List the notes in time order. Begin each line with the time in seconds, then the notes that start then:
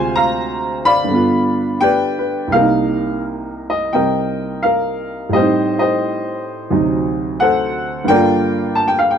Already playing: D2 C3 G#3 F4 C5 F5 G#5
0.16 F5 A#5
0.85 D5 F5 B5
1.04 G2
1.08 D3 B3
1.15 F4
1.81 G4 B4 D5 G5
2.19 B4
2.47 C2
2.52 C3 A#3 A#4 F5
2.58 D#4
3.70 D#5
3.93 C3 G3 C4 A#4 D#5 G5
4.63 A#4 F5
5.29 A2 G3 D#5
5.35 C4 G4 C5
5.40 D#4
5.79 G4 C5 D#5
6.71 D2 C3 F#3 D#4
7.40 A4 C5 F#5
8.04 G2 D3 G5
8.09 A#3 A#4 D5
8.15 F4
8.75 A5
8.88 G5
8.99 F5
9.11 G5